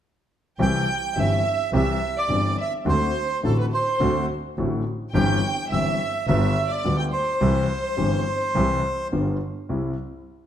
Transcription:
0.59 0.83 C2 medium
0.59 0.83 C3 medium
0.59 0.83 E3 soft
0.59 0.83 G3 soft
0.59 0.83 C4 soft
0.59 0.83 G4 soft
0.59 1.13 G5 medium
0.59 1.19 G5 medium
1.16 1.40 G1 soft
1.16 1.40 G2 soft
1.16 1.40 E3 soft
1.16 1.40 G3 soft
1.16 1.40 C4 soft
1.16 1.40 G4 soft
1.16 1.70 E5 medium
1.16 1.71 E5 medium
1.73 1.97 C2 medium
1.73 1.97 C3 medium
1.73 1.97 E3 soft
1.73 1.97 G3 soft
1.73 1.97 C4 soft
1.73 1.97 G4 medium
1.73 2.14 E5 medium
1.73 2.19 E5 medium
2.17 2.56 D5 medium
2.17 2.57 D5 medium
2.28 2.53 G1 soft
2.28 2.53 G2 soft
2.28 2.53 E3 soft
2.28 2.53 G3 soft
2.28 2.53 C4 soft
2.28 2.53 G4 soft
2.59 2.72 E5 soft
2.59 2.73 E5 medium
2.85 3.10 D2 medium
2.85 3.10 D3 medium
2.85 3.10 A3 soft
2.85 3.10 C4 soft
2.85 3.10 F#4 medium
2.85 3.40 C5 medium
2.85 3.41 C5 medium
3.43 3.68 A1 soft
3.43 3.68 A2 soft
3.43 3.67 D3 soft
3.43 3.67 A3 soft
3.43 3.67 C4 soft
3.43 3.68 F#4 soft
3.43 3.57 A4 soft
3.43 3.57 A4 medium
3.57 3.64 B4 soft
3.57 3.66 B4 medium
3.72 4.25 C5 soft
3.72 4.26 C5 medium
4.00 4.24 D2 medium
4.00 4.25 D2 medium
4.00 4.24 D3 medium
4.00 4.24 A3 soft
4.00 4.25 C4 medium
4.00 4.25 F#4 medium
4.58 4.81 A1 soft
4.58 4.82 A2 soft
4.58 4.81 D3 soft
4.58 4.82 A3 soft
4.58 4.81 C4 soft
4.58 4.82 F#4 soft
5.12 5.38 G1 medium
5.12 5.38 G2 medium
5.12 5.38 E3 medium
5.12 5.38 G3 soft
5.12 5.38 C4 soft
5.12 5.38 G4 medium
5.12 5.66 G5 medium
5.12 5.67 G5 medium
5.70 5.95 G1 soft
5.70 5.96 G2 soft
5.70 5.95 E3 soft
5.70 5.95 G3 soft
5.70 5.96 C4 soft
5.70 5.95 G4 soft
5.70 6.23 E5 medium
5.70 6.26 E5 medium
6.26 6.51 G1 medium
6.26 6.52 G1 medium
6.26 6.52 G2 medium
6.26 6.52 D3 medium
6.26 6.52 G3 medium
6.26 6.52 B3 medium
6.26 6.52 F4 medium
6.26 6.66 E5 medium
6.26 6.71 E5 medium
6.69 6.96 D5 medium
6.85 7.08 D2 soft
6.85 7.09 D2 soft
6.85 7.08 D3 soft
6.85 7.09 G3 soft
6.85 7.08 B3 soft
6.85 7.09 F4 soft
6.97 7.04 G5 medium
6.97 7.05 G5 medium
7.12 9.08 C5 medium
7.41 7.65 C2 medium
7.41 7.65 C3 medium
7.41 7.65 E3 medium
7.41 7.65 G3 soft
7.41 7.65 C4 medium
7.41 7.65 G4 medium
7.97 8.21 G1 soft
7.97 8.22 G1 soft
7.97 8.21 G2 soft
7.97 8.21 E3 soft
7.97 8.21 G3 soft
7.97 8.21 C4 soft
7.97 8.22 G4 soft
8.55 8.79 C2 medium
8.55 8.79 C3 medium
8.55 8.79 E3 soft
8.55 8.79 G3 soft
8.55 8.79 C4 soft
8.55 8.79 G4 medium
9.12 9.36 G1 soft
9.12 9.36 G2 soft
9.12 9.36 D3 soft
9.12 9.36 G3 soft
9.12 9.36 B3 soft
9.12 9.36 F4 soft
9.69 9.93 C2 soft
9.69 9.93 G3 soft
9.69 9.93 C4 soft
9.69 9.93 E4 soft

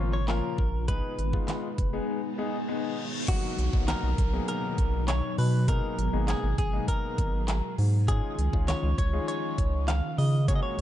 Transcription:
0.00 0.42 G#1 medium
0.00 0.86 A#2 medium
0.00 0.86 C#3 medium
0.00 0.15 F3 medium
0.00 0.15 A#3 medium
0.00 0.15 C#4 medium
0.00 0.15 F4 medium
0.00 0.86 F4 medium
0.00 0.12 C#5 loud
0.13 0.28 C#5 loud
0.28 0.62 F3 medium
0.28 0.62 A#3 medium
0.28 0.62 C#4 medium
0.28 0.62 F4 medium
0.28 0.88 A#4 loud
0.28 snare medium
0.28 clap loud
0.58 1.01 A#1 loud
0.58 kick medium
0.88 1.13 G#3 medium
0.88 3.26 G#3 medium
0.88 3.26 B3 medium
0.88 1.13 B3 medium
0.88 3.26 D#4 medium
0.88 1.14 D#4 medium
0.88 1.14 G#4 medium
0.88 2.64 B4 medium
0.88 kick loud
0.88 closed hi-hat loud
1.18 1.40 G#1 medium
1.18 closed hi-hat medium
1.33 1.67 G#3 medium
1.33 1.67 B3 medium
1.33 1.67 D#4 medium
1.33 1.67 F4 medium
1.33 kick medium
1.48 snare loud
1.48 clap loud
1.48 closed hi-hat medium
1.78 2.00 F1 medium
1.78 kick loud
1.78 closed hi-hat medium
1.93 2.18 G#3 medium
1.93 2.18 B3 medium
1.93 2.18 D#4 medium
1.93 2.19 G#4 medium
2.08 reverse cymbal medium
2.38 2.55 G#3 medium
2.38 2.55 B3 medium
2.38 2.55 D#4 medium
2.38 2.55 G#4 loud
2.68 3.02 G#3 medium
2.68 3.02 B3 medium
2.68 3.02 D#4 medium
2.68 3.02 G#4 loud
3.28 8.04 B2 medium
3.28 3.53 F#3 medium
3.28 8.04 F#3 medium
3.28 3.53 A#3 medium
3.28 3.53 B3 medium
3.28 3.54 D#4 medium
3.28 5.66 D#4 loud
3.28 3.84 F#4 medium
3.28 3.54 F#4 medium
3.28 kick loud
3.28 closed hi-hat loud
3.28 crash loud
3.28 downlifter medium
3.58 3.69 B1 medium
3.58 closed hi-hat medium
3.73 3.95 B1 medium
3.73 4.07 F#3 medium
3.73 4.07 A#3 medium
3.73 4.07 B3 medium
3.73 4.07 D#4 medium
3.73 4.07 F#4 medium
3.73 kick medium
3.88 4.47 A#4 medium
3.88 snare loud
3.88 clap loud
3.88 closed hi-hat medium
4.03 4.14 B1 loud
4.18 4.40 B1 medium
4.18 kick loud
4.18 closed hi-hat medium
4.33 5.00 F#3 medium
4.33 5.00 A#3 medium
4.33 5.00 B3 medium
4.33 5.00 D#4 medium
4.33 5.00 G#4 medium
4.48 5.04 A#4 loud
4.48 closed hi-hat loud
4.78 5.21 B1 medium
4.78 kick medium
4.78 closed hi-hat medium
5.08 5.38 C#5 loud
5.08 snare medium
5.08 clap loud
5.08 closed hi-hat medium
5.38 5.81 B2 medium
5.38 5.66 B4 loud
5.38 open hi-hat medium
5.68 5.93 G#3 medium
5.68 5.93 A#3 medium
5.68 5.93 B3 medium
5.68 5.93 D#4 medium
5.68 5.93 G#4 medium
5.68 8.06 G#4 medium
5.68 6.28 A#4 loud
5.68 kick loud
5.68 closed hi-hat loud
5.98 6.09 G#1 medium
5.98 closed hi-hat medium
6.13 6.35 G#1 medium
6.13 6.47 G#3 medium
6.13 6.47 A#3 medium
6.13 6.47 B3 medium
6.13 6.47 D#4 medium
6.13 6.47 G#4 medium
6.28 6.57 G#4 medium
6.28 snare loud
6.28 clap loud
6.28 closed hi-hat medium
6.43 6.54 G#1 loud
6.58 6.80 G#1 medium
6.58 6.88 G#4 medium
6.58 kick loud
6.58 closed hi-hat medium
6.73 7.40 G#3 medium
6.73 7.40 A#3 medium
6.73 7.40 B3 medium
6.73 7.40 D#4 medium
6.73 7.40 G#4 medium
6.88 7.74 A#4 medium
6.88 kick medium
6.88 closed hi-hat loud
7.18 7.61 G#1 loud
7.18 kick loud
7.18 closed hi-hat medium
7.48 snare medium
7.48 clap loud
7.48 closed hi-hat medium
7.78 8.22 G#2 medium
7.78 open hi-hat medium
8.08 10.46 D#3 medium
8.08 8.33 G#3 medium
8.08 8.33 C#4 medium
8.08 10.46 C#4 medium
8.08 8.33 D#4 medium
8.08 8.33 F4 medium
8.08 10.46 F4 medium
8.08 8.68 G#4 loud
8.08 8.34 G#4 medium
8.08 kick loud
8.08 closed hi-hat loud
8.38 8.49 C#2 loud
8.38 closed hi-hat medium
8.53 8.75 C#2 medium
8.53 8.87 G#3 medium
8.53 8.87 C#4 medium
8.53 8.87 D#4 medium
8.53 8.87 F4 medium
8.53 8.87 G#4 medium
8.53 kick medium
8.68 8.97 C#5 loud
8.68 snare loud
8.68 clap loud
8.68 closed hi-hat medium
8.83 8.94 C#2 loud
8.98 9.20 C#2 medium
8.98 9.26 C#5 medium
8.98 kick loud
8.98 closed hi-hat medium
9.13 9.80 G#3 medium
9.13 9.80 C#4 medium
9.13 9.80 D#4 medium
9.13 9.80 F4 medium
9.13 9.80 G#4 medium
9.28 9.88 C#5 loud
9.28 closed hi-hat medium
9.58 10.02 C#2 medium
9.58 kick loud
9.58 closed hi-hat medium
9.88 10.18 F5 loud
9.88 snare medium
9.88 clap loud
9.88 closed hi-hat medium
10.18 10.62 C#3 medium
10.18 10.48 D#5 loud
10.18 open hi-hat medium
10.48 10.81 A#2 medium
10.48 10.73 G#3 medium
10.48 10.81 G#3 medium
10.48 10.73 A#3 medium
10.48 10.73 C#4 medium
10.48 10.81 F#4 loud
10.48 10.74 F#4 medium
10.48 10.74 G#4 medium
10.48 10.55 C#5 loud
10.48 kick loud
10.48 closed hi-hat loud
10.55 10.62 D#5 medium
10.63 10.81 C#5 loud

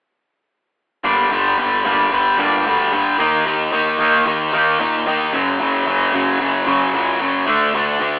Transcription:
1.04 1.29 G1 medium
1.04 1.30 G2 medium
1.04 1.30 D3 medium
1.04 1.31 G3 medium
1.04 1.29 A#3 medium
1.04 1.30 D4 medium
1.30 1.56 G1 medium
1.30 1.56 G2 medium
1.30 1.57 D3 medium
1.30 1.57 G3 medium
1.30 1.56 A#3 medium
1.58 1.83 G1 medium
1.58 1.84 G2 medium
1.58 1.84 D3 medium
1.58 1.84 G3 medium
1.58 1.82 A#3 medium
1.85 2.10 G1 medium
1.85 2.11 G2 medium
1.85 2.10 D3 medium
1.85 2.11 G3 medium
1.85 2.10 A#3 medium
1.85 2.10 D4 medium
2.11 2.37 G1 medium
2.11 2.37 G2 medium
2.11 2.37 D3 medium
2.11 2.38 G3 medium
2.11 2.36 A#3 medium
2.37 2.63 G1 medium
2.37 2.65 G2 medium
2.37 2.65 D3 medium
2.37 2.65 G3 medium
2.37 2.64 A#3 medium
2.37 2.64 D4 medium
2.65 2.90 D2 medium
2.65 2.91 G2 medium
2.65 2.92 D3 medium
2.65 2.92 G3 medium
2.65 2.90 A#3 medium
2.92 3.17 G2 medium
2.92 3.18 G2 medium
2.92 3.18 D3 medium
2.92 3.18 G3 medium
2.92 3.17 A#3 medium
3.18 3.44 D#2 medium
3.18 3.45 D#3 medium
3.18 3.46 A#3 medium
3.18 3.46 D#4 medium
3.46 3.71 D#2 medium
3.46 3.71 D#3 medium
3.46 3.72 A#3 medium
3.46 3.72 D#4 medium
3.72 3.97 D#2 medium
3.72 3.98 D#3 medium
3.72 4.00 A#3 medium
3.72 3.99 D#4 medium
3.99 4.24 D#2 medium
3.99 4.24 D#3 medium
3.99 4.26 A#3 medium
3.99 4.26 D#4 medium
4.26 4.51 D#2 medium
4.26 4.52 D#3 medium
4.26 4.52 A#3 medium
4.26 4.53 D#4 medium
4.53 4.78 D#2 medium
4.53 4.78 D#3 medium
4.53 4.78 A#3 medium
4.53 4.79 D#4 medium
4.79 5.05 A#2 medium
4.79 5.05 D#3 medium
4.79 5.06 A#3 medium
4.79 5.07 D#4 medium
5.07 5.32 D#3 medium
5.07 5.32 A#3 medium
5.07 5.32 D#4 medium
5.33 5.59 F#1 medium
5.33 5.59 F#2 medium
5.33 5.59 C#3 medium
5.33 5.60 F#3 medium
5.60 5.85 F#1 medium
5.60 5.85 F#2 medium
5.60 5.85 C#3 medium
5.60 5.86 F#3 medium
5.86 6.12 F#1 medium
5.86 6.12 F#2 medium
5.86 6.13 C#3 medium
5.86 6.14 F#3 medium
6.13 6.38 F#1 medium
6.13 6.38 F#2 medium
6.13 6.39 C#3 medium
6.13 6.39 F#3 medium
6.39 6.65 F#1 medium
6.39 6.65 F#2 medium
6.39 6.65 C#3 medium
6.39 6.66 F#3 medium
6.67 6.92 F#1 medium
6.67 6.93 F#2 medium
6.67 6.92 C#3 medium
6.67 6.93 F#3 medium
6.93 7.19 C#2 medium
6.93 7.19 F#2 medium
6.93 7.19 C#3 medium
6.93 7.20 F#3 medium
7.20 7.45 F#2 medium
7.20 7.47 F#2 medium
7.20 7.46 C#3 medium
7.20 7.46 F#3 medium
7.46 7.72 D2 medium
7.46 7.73 D3 medium
7.46 7.74 A3 medium
7.46 7.75 D4 medium
7.74 7.99 D2 medium
7.74 7.99 D3 medium
7.74 8.00 A3 medium
7.74 8.01 D4 medium
8.00 8.19 D2 medium
8.00 8.19 D3 medium
8.00 8.19 A3 medium
8.00 8.19 D4 medium

